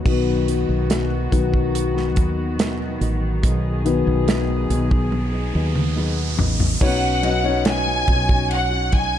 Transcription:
0.04 B1 B2 D#3 F#3 B3 D#4 F#4 B4, kick, crash
0.47 F#3 B3 D#4 B4, closed hi-hat
0.69 B1
0.89 B2 F#3 B3 D#4 B4, snare, closed hi-hat
1.31 B1 D#3 F#3 B3 D#4 B4, kick, closed hi-hat
1.52 B3 D#4 B4, kick
1.75 closed hi-hat
1.94 B3 D#4 B4, snare
2.15 D#2 F#3 B3 D#4 B4, kick, closed hi-hat
2.58 B2 F#3 B3 D#4 B4, snare, closed hi-hat
3.00 A1 F#3 B3 D#4 B4, closed hi-hat
3.42 B1 B2 F#3 B3 D#4 G#4 B4, kick, closed hi-hat, riser
3.84 D#3 F#3 B3 D#4 B4, closed hi-hat
4.07 B1
4.27 B2 F#3 B3 D#4 B4, snare, closed hi-hat
4.69 B1 F#3 B3 D#4 B4, closed hi-hat
4.90 B3 D#4 B4, kick
5.12 high tom
5.32 B3 D#4 B4
5.53 D#2 F#3 B3 D#4 B4
5.75 mid tom
5.96 B2 F#3 B3 D#4 B4
6.38 A1 F#3 B3 D#4 B4, floor tom
6.60 floor tom
6.80 B1 B2 F#3 C#4 D#4 F#4 B4 C#5 F#5, kick, crash
7.22 F#3 C#4 D#4 F#4 B4 D#5, ride
7.44 C#4 D#4 F#4 B4 C#5
7.64 B2 F#3 C#4 D#4 F#4 G#5, snare, ride
8.07 B1 F#3 C#4 D#4 F#4, kick, ride
8.29 C#4 D#4 F#4, kick
8.51 F#5, ride
8.71 C#4 D#4 F#4
8.92 F#3 C#4 D#4 F#4 G#5, kick, ride

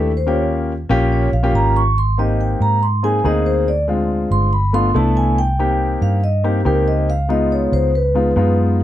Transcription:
Already playing: D#2 A3 D4 E4 G4 A4
0.17 C5
0.27 A#3 C#4 F4 G4 C#5
0.89 A#1 A#3 C#4 F4 G4
1.13 C#5
1.32 A#1 F5
1.43 A#3 C#4 F4 G4
1.53 G#1 A#5
1.76 C#6
1.98 C6
2.18 A#3 C4 D#4 G4 D#5
2.41 G5
2.60 G#2 A#5
2.83 C6
3.03 A#3 C4 D#4 G#4 G#5
3.24 D2 A#3 C4 D#4 G#4 D#5
3.46 C5
3.68 D5
3.88 G#3 C4 D4 F4
4.31 G1 C6
4.53 B5
4.73 A3 B3 D4 F4 C6
4.94 C2 A3 B3 D4 E4 A5
5.17 G#5
5.38 G5
5.59 A#3 C4 D#4 G4
6.01 G2 F5
6.24 D#5
6.44 A#3 C4 D#4 G4
6.65 C#2 A#3 C4 D#4 G4 A#4
6.88 D#5
7.10 F5
7.29 G#3 B3 D#4 F4 D#5
7.52 C#5
7.72 C#2 C5
7.95 B4
8.15 G#3 B3 D#4 F4
8.36 F#2 G#3 B3 D#4 F4

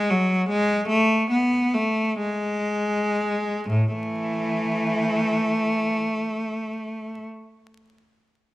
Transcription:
Already playing: G#3
0.10 F#3
0.50 G#3
0.88 A3
1.31 B3
1.74 A3
2.19 G#3
3.69 A2
3.92 E3 A3

